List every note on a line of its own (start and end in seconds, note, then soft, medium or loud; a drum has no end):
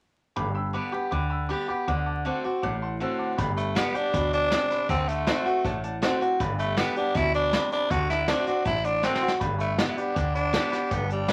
0.36 0.76 G1 loud
0.36 1.08 G2 medium
0.36 0.47 G5 loud
0.36 0.47 B5 medium
0.36 0.48 D6 loud
0.54 0.66 G5 medium
0.54 0.66 B5 medium
0.54 0.66 E6 loud
0.73 0.92 D3 medium
0.73 0.92 G3 medium
0.73 0.92 B3 medium
0.73 0.91 G4 medium
0.73 0.85 G5 medium
0.73 0.85 B5 medium
0.73 0.85 D6 medium
0.92 1.11 B3 medium
0.92 1.10 G4 medium
0.92 1.04 G5 medium
0.92 1.04 B5 medium
0.92 1.04 D6 medium
0.92 muted upright bass stroke medium
1.11 1.51 D2 medium
1.11 1.48 D3 medium
1.11 1.23 G5 loud
1.11 1.23 B5 medium
1.11 1.23 D6 loud
1.30 1.41 G5 medium
1.30 1.41 B5 medium
1.30 1.42 E6 medium
1.49 1.67 D3 medium
1.49 1.68 G3 medium
1.49 1.68 B3 medium
1.49 1.67 G4 medium
1.49 1.60 G5 medium
1.49 1.61 B5 medium
1.49 1.60 D6 loud
1.68 1.87 B3 soft
1.68 1.87 G4 medium
1.68 1.80 G5 medium
1.68 1.80 B5 medium
1.68 1.80 D6 medium
1.68 muted upright bass stroke medium
1.87 2.27 D2 loud
1.87 2.24 D3 loud
1.87 1.99 F#5 loud
1.87 1.99 A5 loud
1.87 1.99 D6 loud
2.06 2.17 F#5 medium
2.06 2.17 A5 medium
2.06 2.17 D6 loud
2.25 2.43 D3 medium
2.25 2.43 A3 medium
2.25 2.44 C4 medium
2.25 2.43 F#4 medium
2.25 2.37 F#5 medium
2.25 2.37 A5 medium
2.25 2.37 D6 medium
2.44 2.63 C4 soft
2.44 2.62 F#4 medium
2.44 2.55 F#5 medium
2.44 2.55 A5 medium
2.44 2.55 D6 medium
2.44 muted upright bass stroke medium
2.62 3.02 A1 medium
2.62 3.35 A2 medium
2.62 2.74 F#5 loud
2.62 2.74 A5 loud
2.62 2.74 D6 loud
2.82 2.93 F#5 medium
2.82 2.93 A5 medium
2.82 2.93 C6 loud
3.00 3.36 D3 medium
3.00 3.37 A3 medium
3.00 3.37 C4 medium
3.00 3.37 F#4 medium
3.00 3.12 F#5 medium
3.00 3.12 A5 medium
3.00 3.12 E6 medium
3.19 3.30 F#5 medium
3.19 3.30 A5 medium
3.19 3.30 D6 medium
3.19 muted upright bass stroke medium
3.38 3.78 G1 loud
3.38 4.10 G2 medium
3.38 3.49 D5 loud
3.38 3.49 G5 loud
3.38 3.49 B5 loud
3.38 kick loud
3.38 closed hi-hat medium
3.56 3.78 A3 medium
3.56 3.68 D5 medium
3.56 3.68 G5 medium
3.56 3.68 B5 medium
3.56 closed hi-hat medium
3.75 3.94 D3 medium
3.75 3.94 G3 medium
3.75 3.94 B3 medium
3.75 3.97 B3 loud
3.75 3.93 G4 loud
3.75 3.87 D5 medium
3.75 3.87 A5 medium
3.75 snare loud
3.75 closed hi-hat medium
3.94 4.13 B3 soft
3.94 4.33 D4 loud
3.94 4.13 G4 medium
3.94 4.06 D5 medium
3.94 4.06 G5 medium
3.94 4.06 D6 medium
3.94 muted upright bass stroke medium
3.94 closed hi-hat medium
4.13 4.53 D2 medium
4.13 4.50 B2 medium
4.13 4.24 D5 medium
4.13 4.25 G5 medium
4.13 4.25 B5 loud
4.13 kick loud
4.13 closed hi-hat medium
4.31 4.86 D4 loud
4.31 4.43 D5 medium
4.31 4.43 G5 medium
4.31 4.43 D6 loud
4.31 closed hi-hat medium
4.51 4.87 C3 medium
4.51 4.62 D5 loud
4.51 4.63 G5 medium
4.51 4.63 A5 loud
4.51 snare loud
4.51 closed hi-hat medium
4.70 4.82 D5 medium
4.70 4.82 B5 medium
4.70 muted upright bass stroke medium
4.70 snare soft
4.70 closed hi-hat medium
4.89 5.29 D2 loud
4.89 5.25 D3 medium
4.89 5.09 C4 medium
4.89 5.00 D5 loud
4.89 5.00 F#5 medium
4.89 5.00 A5 loud
4.89 kick loud
4.89 closed hi-hat medium
5.07 5.83 A3 medium
5.07 5.19 D5 medium
5.07 5.19 F#5 medium
5.07 5.19 A5 medium
5.07 closed hi-hat medium
5.27 5.45 D3 medium
5.27 5.45 A3 loud
5.27 5.45 C4 loud
5.27 5.44 F#4 loud
5.27 5.38 D5 medium
5.27 5.38 F#5 medium
5.27 5.38 C6 medium
5.27 snare loud
5.27 closed hi-hat medium
5.45 5.64 C4 soft
5.45 5.64 F#4 medium
5.45 5.57 D5 medium
5.45 5.57 F#5 medium
5.45 5.57 A5 medium
5.45 muted upright bass stroke medium
5.45 closed hi-hat medium
5.64 6.04 A1 medium
5.64 6.36 A2 medium
5.64 5.76 D5 loud
5.64 5.76 F#5 loud
5.64 5.76 A5 loud
5.64 kick loud
5.64 closed hi-hat medium
5.83 5.95 D5 loud
5.83 5.95 F#5 medium
5.83 5.95 A5 loud
5.83 closed hi-hat medium
6.02 6.20 D3 loud
6.02 6.20 A3 loud
6.02 6.21 C4 loud
6.02 6.20 F#4 loud
6.02 6.13 D5 loud
6.02 6.13 F#5 medium
6.02 6.13 A5 loud
6.02 snare loud
6.02 closed hi-hat medium
6.21 6.40 C4 soft
6.21 6.39 F#4 medium
6.21 6.33 D5 medium
6.21 6.33 F#5 medium
6.21 6.33 A5 medium
6.21 muted upright bass stroke medium
6.21 closed hi-hat medium
6.40 6.80 G1 loud
6.40 7.11 G2 medium
6.40 6.51 D5 loud
6.40 6.51 G5 loud
6.40 6.51 B5 loud
6.40 kick loud
6.40 closed hi-hat medium
6.59 6.79 A3 loud
6.59 6.70 D5 medium
6.59 6.70 G5 medium
6.59 6.70 B5 medium
6.59 closed hi-hat medium
6.77 6.95 D3 medium
6.77 6.96 G3 medium
6.77 6.96 B3 loud
6.77 6.96 B3 medium
6.77 6.95 G4 loud
6.77 6.89 D5 medium
6.77 6.89 G5 medium
6.77 6.89 D6 medium
6.77 snare loud
6.77 closed hi-hat medium
6.96 7.15 B3 medium
6.96 7.18 D4 loud
6.96 7.14 G4 medium
6.96 7.08 D5 medium
6.96 7.08 G5 medium
6.96 7.08 D6 medium
6.96 muted upright bass stroke medium
6.96 closed hi-hat medium
7.15 7.55 D2 medium
7.15 7.51 B2 medium
7.15 7.34 E4 loud
7.15 7.26 D5 medium
7.15 7.26 G5 medium
7.15 7.26 A5 loud
7.15 kick loud
7.15 snare soft
7.15 closed hi-hat medium
7.34 7.69 D4 loud
7.34 7.45 D5 medium
7.34 7.46 G5 medium
7.34 7.46 B5 medium
7.34 closed hi-hat medium
7.53 7.89 C3 medium
7.53 7.64 D5 loud
7.53 7.64 G5 medium
7.53 7.64 B5 loud
7.53 snare loud
7.53 closed hi-hat medium
7.72 7.92 D4 loud
7.72 7.83 D5 medium
7.72 7.83 B5 medium
7.72 muted upright bass stroke medium
7.72 snare soft
7.72 closed hi-hat medium
7.91 8.30 D2 loud
7.91 8.27 D3 medium
7.91 8.09 F#4 medium
7.91 8.02 D5 loud
7.91 8.02 F#5 medium
7.91 8.02 A5 loud
7.91 kick loud
7.91 closed hi-hat medium
8.09 8.30 E4 loud
8.09 8.21 D5 medium
8.09 8.21 F#5 medium
8.09 8.21 A5 medium
8.09 snare soft
8.09 closed hi-hat medium
8.28 8.46 D3 medium
8.28 8.46 A3 medium
8.28 8.47 C4 medium
8.28 8.47 D4 medium
8.28 8.46 F#4 loud
8.28 8.40 D5 medium
8.28 8.40 F#5 medium
8.28 8.40 A5 medium
8.28 snare loud
8.28 closed hi-hat medium
8.47 8.66 C4 soft
8.47 8.65 D4 medium
8.47 8.65 F#4 medium
8.47 8.58 D5 medium
8.47 8.58 F#5 medium
8.47 8.58 C6 medium
8.47 muted upright bass stroke medium
8.47 closed hi-hat medium
8.65 9.05 A1 medium
8.65 9.37 A2 medium
8.65 8.87 E4 loud
8.65 8.77 D5 medium
8.65 8.77 F#5 medium
8.65 8.77 A5 loud
8.65 kick loud
8.65 closed hi-hat medium
8.84 9.06 D4 loud
8.84 8.96 D5 medium
8.84 8.96 F#5 medium
8.84 8.96 C6 medium
8.84 closed hi-hat medium
9.03 9.21 D3 medium
9.03 9.22 A3 loud
9.03 9.22 C4 medium
9.03 9.32 C4 loud
9.03 9.21 F#4 medium
9.03 9.14 D5 medium
9.03 9.14 F#5 medium
9.03 9.14 C6 loud
9.03 snare medium
9.15 snare medium
9.21 9.41 C4 soft
9.21 9.40 F#4 medium
9.21 9.33 D5 medium
9.21 9.33 F#5 medium
9.21 9.33 C6 medium
9.21 muted upright bass stroke medium
9.28 snare medium
9.40 9.81 G1 loud
9.40 10.12 G2 loud
9.40 9.52 D5 loud
9.40 9.52 G5 loud
9.40 9.52 B5 loud
9.40 kick loud
9.40 closed hi-hat medium
9.58 9.80 A3 medium
9.58 9.71 D5 medium
9.58 9.70 G5 medium
9.58 9.70 B5 medium
9.58 closed hi-hat medium
9.77 9.97 D3 medium
9.77 9.97 G3 medium
9.77 9.90 B3 medium
9.77 9.97 B3 loud
9.77 9.96 G4 medium
9.77 9.89 D5 medium
9.77 9.89 A5 medium
9.77 snare loud
9.77 closed hi-hat medium
9.90 9.99 E4 medium
9.97 10.16 B3 soft
9.97 10.35 D4 medium
9.97 10.15 G4 medium
9.97 10.08 D5 medium
9.97 10.08 G5 medium
9.97 10.08 B5 medium
9.97 muted upright bass stroke medium
9.97 closed hi-hat medium
10.14 10.56 D2 medium
10.14 10.52 D3 medium
10.14 10.27 D5 loud
10.14 10.27 G5 medium
10.14 10.27 D6 loud
10.14 kick loud
10.14 closed hi-hat medium
10.34 10.94 D4 loud
10.34 10.46 D5 medium
10.34 10.46 G5 medium
10.34 10.46 B5 medium
10.34 closed hi-hat medium
10.53 10.71 D3 medium
10.53 10.72 G3 loud
10.53 10.72 B3 medium
10.53 10.71 G4 loud
10.53 10.65 D5 loud
10.53 10.65 G5 medium
10.53 10.65 A5 loud
10.53 snare loud
10.53 closed hi-hat medium
10.72 10.91 B3 soft
10.72 10.90 G4 medium
10.72 10.83 D5 medium
10.72 10.84 G5 medium
10.72 10.83 B5 medium
10.72 muted upright bass stroke medium
10.72 snare soft
10.72 closed hi-hat medium
10.90 11.31 G1 loud
10.90 11.33 G2 medium
10.90 11.11 B3 medium
10.90 11.02 D5 loud
10.90 11.02 G5 medium
10.90 11.02 D6 loud
10.90 kick loud
10.90 closed hi-hat medium
11.09 11.33 G3 medium
11.09 11.21 D5 medium
11.09 11.21 G5 medium
11.09 11.21 A5 medium
11.09 closed hi-hat medium
11.28 11.33 D3 medium
11.28 11.33 G3 medium
11.28 11.33 D5 medium
11.28 11.33 G5 medium
11.28 11.33 B5 medium
11.28 snare loud
11.28 closed hi-hat medium